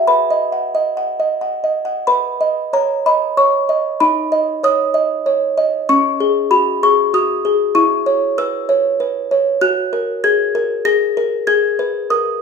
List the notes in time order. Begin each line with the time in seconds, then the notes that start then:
0.07 B4 B5
0.30 D#5
0.52 F#5
0.75 D#5
0.97 F#5
1.20 D#5
1.41 F#5
1.64 D#5
1.85 F#5
2.07 B4 B5
2.41 D#5
2.73 C#5 A#5
3.06 D#5 B5
3.37 C#5 C#6
3.69 D#5
4.00 D#4 B5
4.32 D#5
4.64 C#5 D#6
4.94 D#5
5.26 C#5
5.57 D#5
5.89 C#4 C#6
6.20 G#4
6.51 F#4 B5
6.83 G#4 C#6
7.14 F#4 D#6
7.45 G#4
7.75 E4 C#6
8.06 C#5
8.38 B4 E6
8.69 C#5
9.00 B4
9.31 C#5
9.61 F#4 F#6
9.93 A#4
10.24 G#4 G#6
10.55 A#4
10.85 G#4 A#6
11.17 A#4
11.47 G#4 G#6
11.79 B4
12.10 A#4 D#6